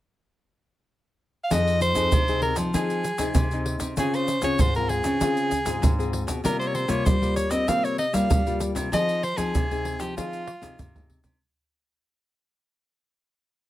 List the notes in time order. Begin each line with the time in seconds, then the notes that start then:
1.44 F5
1.51 F2 F3 C4 D#4 G#4 D#5, pandeiro, shaker, surdo
1.67 pandeiro, shaker
1.81 C5, pandeiro, shaker
1.95 F2 C4 D#4 G#4, pandeiro, shaker, surdo
2.12 C3, pandeiro, shaker, surdo
2.28 C4 D#4 G#4, pandeiro, shaker, surdo
2.42 A#4, pandeiro
2.56 F3, pandeiro, shaker
2.74 F3 C4 D#4 G#4, pandeiro, shaker, surdo
2.90 pandeiro, shaker
3.04 pandeiro, shaker
3.18 C3 C4 D#4 G#4, pandeiro, shaker, surdo
3.35 C3, pandeiro, shaker, surdo
3.51 C4 D#4 G#4, pandeiro, shaker
3.66 pandeiro
3.80 C3, pandeiro, shaker, surdo
3.97 C#3 C4 F4 G#4, pandeiro, shaker, surdo
4.14 C5, pandeiro, shaker
4.28 pandeiro, shaker
4.42 C#3 C4 F4 G#4 C#5, pandeiro, shaker, surdo
4.59 G#2 C5, pandeiro, shaker, surdo
4.75 C4 F4 G#4 A#4, pandeiro, shaker, surdo
4.89 G#4, pandeiro
5.04 C#3, pandeiro, shaker
5.21 C#3 C4 F4 G#4, pandeiro, shaker, surdo
5.37 pandeiro, shaker
5.51 pandeiro, shaker, surdo
5.65 G#2 C4 F4 G#4, pandeiro, shaker, surdo
5.82 G#2, pandeiro, shaker, surdo
5.99 C4 F4 G#4, pandeiro, shaker
6.13 pandeiro
6.27 B2, pandeiro, shaker, surdo
6.44 C3 G3 A#3 F4 A#4, pandeiro, shaker, surdo
6.59 C5, pandeiro, shaker
6.67 C#5
6.75 C5, pandeiro
6.88 C3 G3 A#3 F4 C#5, pandeiro, shaker, surdo
7.05 G2 G3 C5, pandeiro, shaker, surdo
7.22 G3 A#3 F4, pandeiro, shaker, surdo
7.36 C#5, pandeiro, shaker
7.51 C4 D#5, pandeiro, shaker
7.68 C3 G3 A#3 F4 F5, pandeiro, shaker, surdo
7.84 C#5, pandeiro, shaker
7.98 D#5, pandeiro
8.13 G3 A#3 F4 F5, pandeiro, shaker, surdo
8.30 G2 G3, pandeiro, shaker, surdo
8.47 G3 A#3 F4, pandeiro, shaker
8.60 pandeiro, shaker
8.75 C3, pandeiro, shaker, surdo
8.92 F3 C4 D#4 G#4 D#5, pandeiro, shaker, surdo
9.09 pandeiro, shaker
9.23 C5, pandeiro
9.37 F3 C4 D#4 G#4, pandeiro, shaker, surdo
9.55 C3, pandeiro, shaker, surdo
9.71 C4 D#4 G#4, pandeiro, shaker, surdo
9.85 pandeiro
10.00 F3 G4, pandeiro, shaker
10.17 F3 C4 D#4 F4 G#4, pandeiro, shaker, surdo
10.33 pandeiro, shaker
10.47 pandeiro, tamborim
10.61 C3 C4 D#4 G#4, pandeiro, shaker, surdo
10.79 C3, surdo, pandeiro, shaker
10.95 C4 D#4 G#4, pandeiro, shaker, surdo
11.10 pandeiro, surdo
11.24 C3, pandeiro, shaker, surdo